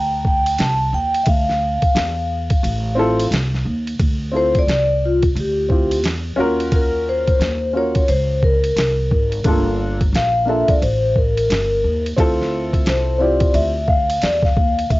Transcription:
Already playing: upright bass D2, vibraphone G5
0.25 vibraphone G5, kick
0.46 ride
0.58 upright bass C2, vibraphone A5, snare, hi-hat pedal, ride
0.93 upright bass D#2, vibraphone G5
1.14 ride
1.23 upright bass D2, vibraphone E5, kick, ride
1.28 vibraphone F5
1.49 snare
1.82 muted upright bass stroke, kick, ride
1.95 upright bass E2, snare, hi-hat pedal, ride
2.50 muted upright bass stroke, kick, ride
2.63 upright bass A1, ride
2.95 upright piano C4 E4 F4
2.99 upright piano A4
3.20 ride
3.31 upright bass C2, snare, hi-hat pedal, ride
3.54 snare
3.65 upright bass D#2
3.87 ride
3.99 upright bass D2, kick, ride
4.31 upright piano C4 E4 F4 A4
4.37 vibraphone C5
4.55 vibraphone D5, kick, ride
4.67 upright bass C2, snare, hi-hat pedal, ride
5.05 vibraphone F4
5.23 kick, ride
5.35 upright bass D2, ride
5.40 vibraphone G4
5.69 upright piano C4 E4 F4 G4, kick
5.91 ride
6.04 upright bass E2, snare, hi-hat pedal, ride
6.36 upright bass D#2, upright piano C#4 F4 F#4
6.40 upright piano A#4
6.60 ride
6.72 vibraphone A#4, kick, ride
7.09 vibraphone C5
7.27 kick, ride
7.39 upright bass D#2, snare, hi-hat pedal, ride
7.73 upright piano C#4 F4 F#4 A#4, vibraphone C#5
7.95 muted upright bass stroke, kick, ride
8.08 upright bass C#2, vibraphone C5, ride
8.43 vibraphone A#4, kick
8.64 ride
8.76 upright bass C2, snare, hi-hat pedal, ride
9.11 upright bass G#1, kick
9.32 ride
9.44 upright bass G1, upright piano A3 D4 F4, kick, ride
9.48 upright piano A#3 A4
10.01 kick, ride
10.13 upright bass A#1, vibraphone F5, snare, hi-hat pedal, ride
10.45 upright piano A#3 D4 F4 A4, vibraphone E5
10.68 vibraphone D5, muted upright bass stroke, kick, ride
10.82 upright bass A1, vibraphone C5, ride
11.16 vibraphone A#4, kick
11.37 vibraphone A#4, ride
11.50 upright bass G1, snare, hi-hat pedal, ride
11.84 upright bass D#2
12.06 ride
12.16 upright bass D2, upright piano C4 E4 F4 A4, kick, ride
12.41 snare
12.73 kick, ride
12.86 upright bass C2, vibraphone C5, snare, hi-hat pedal, ride
13.18 upright piano C4 E4 F4 G4, vibraphone D5
13.40 muted upright bass stroke, kick, ride
13.54 upright bass D2, vibraphone E5, ride
13.88 vibraphone F5, kick
14.10 ride
14.22 upright bass E2, vibraphone D5, snare, hi-hat pedal, ride
14.43 vibraphone F5, kick, snare
14.57 upright bass D#2, kick
14.79 ride
14.90 upright bass D2, vibraphone E5, kick, ride

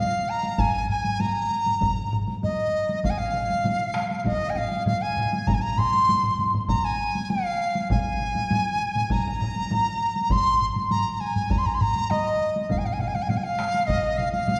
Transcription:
Already playing: dizi F5
0.29 dizi A#5
0.43 taiko high
0.58 dizi G#5, taiko, taiko mid, taiko high
0.89 dizi G#5, taiko mid
1.04 taiko mid, taiko high
1.20 dizi A#5, taiko mid, taiko high
1.50 taiko high
1.66 taiko mid, taiko high
1.81 taiko, taiko mid, taiko high
1.97 taiko mid
2.13 taiko mid
2.28 taiko high
2.43 dizi D#5, taiko mid, taiko high
2.89 taiko high
3.03 dizi F5, taiko, taiko low-mid, taiko high
3.10 dizi G#5
3.18 dizi F5, taiko low-mid
3.34 taiko low-mid
3.50 taiko high
3.64 taiko low-mid, taiko high
3.94 taiko rim, taiko high
4.11 taiko high
4.20 dizi F5
4.25 dizi D#5, taiko, taiko low-mid, taiko high
4.50 dizi G#5
4.55 dizi F5, taiko low-mid
4.72 taiko high
4.86 dizi F5, taiko low-mid, taiko high
5.02 dizi G#5
5.17 taiko low-mid
5.33 taiko high
5.47 dizi A#5, taiko, taiko low-mid, taiko mid, taiko high
5.54 dizi G#5
5.62 dizi A#5
5.78 dizi C6, taiko low-mid, taiko mid
5.94 taiko high
6.08 taiko low-mid, taiko mid, taiko high
6.23 taiko low-mid, taiko mid
6.39 taiko low-mid, taiko mid, taiko high
6.54 taiko low-mid, taiko mid, taiko high
6.68 dizi A#5, taiko, taiko low-mid, taiko mid, taiko high
6.85 dizi G#5
7.15 taiko high
7.30 dizi F5, taiko high
7.75 taiko high
7.90 dizi G#5, taiko, taiko low-mid, taiko high
8.20 taiko low-mid
8.35 taiko low-mid, taiko high
8.51 taiko low-mid, taiko high
8.96 taiko low-mid, taiko high
9.10 dizi A#5, taiko, taiko low-mid, taiko high
9.26 taiko low-mid
9.41 taiko low-mid
9.56 taiko high
9.71 taiko low-mid, taiko high
10.16 taiko high
10.30 dizi C6, taiko, taiko mid, taiko high
10.61 taiko mid
10.76 taiko mid, taiko high
10.91 dizi A#5, taiko mid, taiko high
11.14 dizi A#5
11.20 dizi G#5, taiko high
11.36 taiko mid, taiko high
11.50 dizi A#5, taiko, taiko mid, taiko high
11.58 dizi C6
11.66 dizi A#5, taiko mid
11.74 dizi C6
11.81 dizi A#5, taiko mid
11.96 taiko high
12.10 dizi D#5, taiko mid, taiko high
12.56 taiko high
12.69 dizi F5, taiko, taiko low-mid, taiko high
12.78 dizi G#5
12.85 dizi F5, taiko low-mid
12.93 dizi G#5
12.99 dizi F5, taiko low-mid
13.08 dizi G#5
13.15 dizi F5, taiko high
13.22 dizi G#5
13.28 dizi F5, taiko low-mid, taiko high
13.37 dizi G#5
13.45 dizi F5
13.59 taiko rim, taiko high
13.74 taiko high
13.87 dizi D#5, taiko, taiko low-mid, taiko high
14.17 dizi F5, taiko low-mid
14.32 dizi F5, taiko high
14.48 taiko low-mid, taiko high

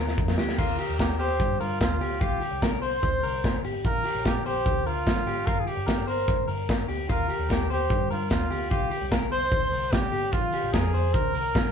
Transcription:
Already playing: picked electric bass D#2, clean electric guitar A#4
0.09 snare
0.18 picked electric bass F2, kick
0.28 snare
0.38 picked electric bass D2, clean electric guitar G4, snare
0.49 snare
0.57 picked electric bass D#2, clean electric guitar F4, trumpet A#4, kick, crash
0.79 clean electric guitar G4, open hi-hat
0.89 picked electric bass D#2
0.99 trumpet G4, clean electric guitar A#4, kick, snare, closed hi-hat
1.19 trumpet G4, clean electric guitar C5, open hi-hat
1.40 picked electric bass G2, kick, closed hi-hat
1.60 picked electric bass G2, trumpet F4, clean electric guitar A#4, open hi-hat
1.81 picked electric bass D#2, trumpet F4, kick, snare, closed hi-hat
2.01 picked electric bass D2, clean electric guitar G4, open hi-hat
2.21 picked electric bass C2, clean electric guitar F4, trumpet G4, kick, closed hi-hat
2.41 clean electric guitar G4, open hi-hat
2.52 picked electric bass C2
2.62 clean electric guitar A#4, kick, snare, closed hi-hat
2.82 trumpet C5, clean electric guitar C5, open hi-hat
3.03 picked electric bass D2, kick, closed hi-hat
3.23 picked electric bass C2, clean electric guitar A#4, open hi-hat
3.44 kick, snare, closed hi-hat
3.65 picked electric bass G#1, clean electric guitar G4, open hi-hat
3.85 picked electric bass A#1, clean electric guitar F4, trumpet A#4, kick, closed hi-hat
4.04 clean electric guitar G4, open hi-hat
4.15 picked electric bass A#1
4.25 trumpet G4, clean electric guitar A#4, kick, snare, closed hi-hat
4.46 trumpet G4, clean electric guitar C5, open hi-hat
4.66 picked electric bass D2, kick, closed hi-hat
4.86 picked electric bass D2, trumpet F4, clean electric guitar A#4, open hi-hat
5.07 picked electric bass A#1, kick, snare, closed hi-hat
5.26 picked electric bass G#1, clean electric guitar G4, open hi-hat
5.46 picked electric bass G1, clean electric guitar F4, trumpet A#4, kick, closed hi-hat
5.60 trumpet G#4
5.67 clean electric guitar G4, trumpet G4, open hi-hat
5.77 picked electric bass G1
5.86 clean electric guitar A#4, kick, snare, closed hi-hat
6.07 trumpet A#4, clean electric guitar C5, open hi-hat
6.28 picked electric bass G#1, kick, closed hi-hat
6.48 picked electric bass G1, clean electric guitar A#4, open hi-hat
6.69 kick, snare, closed hi-hat
6.88 picked electric bass D2, clean electric guitar G4, open hi-hat
7.09 picked electric bass D#2, clean electric guitar F4, trumpet A#4, kick, closed hi-hat
7.29 clean electric guitar G4, open hi-hat
7.39 picked electric bass D#2
7.49 trumpet G4, clean electric guitar A#4, kick, snare, closed hi-hat
7.70 trumpet G4, clean electric guitar C5, open hi-hat
7.90 picked electric bass G2, kick, closed hi-hat
8.10 picked electric bass G2, trumpet F4, clean electric guitar A#4, open hi-hat
8.30 picked electric bass D#2, trumpet F4, kick, snare, closed hi-hat
8.51 picked electric bass D2, clean electric guitar G4, open hi-hat
8.71 picked electric bass C2, clean electric guitar F4, trumpet G4, kick, closed hi-hat
8.91 clean electric guitar G4, open hi-hat
9.02 picked electric bass C2
9.11 clean electric guitar A#4, kick, snare, closed hi-hat
9.32 trumpet C5, clean electric guitar C5, open hi-hat
9.51 picked electric bass D2, kick, closed hi-hat
9.72 picked electric bass C2, clean electric guitar A#4, open hi-hat
9.92 trumpet G4, kick, snare, closed hi-hat
10.12 picked electric bass G#1, clean electric guitar G4, open hi-hat
10.32 picked electric bass A#1, trumpet F4, clean electric guitar F4, kick, closed hi-hat
10.52 clean electric guitar G4, open hi-hat
10.64 picked electric bass A#1
10.73 picked electric bass F2, trumpet G#4, clean electric guitar A#4, kick, snare, closed hi-hat
10.93 picked electric bass F2, clean electric guitar C5, open hi-hat
11.13 picked electric bass D2, trumpet A#4, kick, closed hi-hat
11.34 picked electric bass C2, clean electric guitar A#4, open hi-hat
11.55 picked electric bass A#1, kick, snare, closed hi-hat

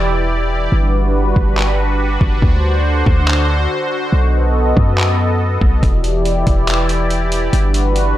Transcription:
Already playing: 808-style bass E1, analog synth pad E3 E4 G4 D5
0.72 808-style bass G1, analog synth pad G3 D4 F#4 B4
1.36 808-style bass G1, kick
1.57 clap
2.21 808-style bass G1, kick
2.42 808-style bass D2, analog synth pad D3 C5, kick
3.06 808-style bass D2, kick
3.28 clap
4.13 808-style bass B1, analog synth pad B3 A4 D#5
4.77 808-style bass F#2, kick
4.98 clap
5.61 808-style bass B1, kick
5.83 808-style bass E1, analog synth pad E3 E4 G4 D5, kick, closed hi-hat
6.04 closed hi-hat
6.25 closed hi-hat
6.47 808-style bass E1, kick, closed hi-hat
6.68 clap, closed hi-hat
6.89 closed hi-hat
7.11 closed hi-hat
7.32 closed hi-hat
7.53 808-style bass G1, analog synth pad G3 D4 F#4 B4, closed hi-hat
7.74 closed hi-hat
7.96 closed hi-hat

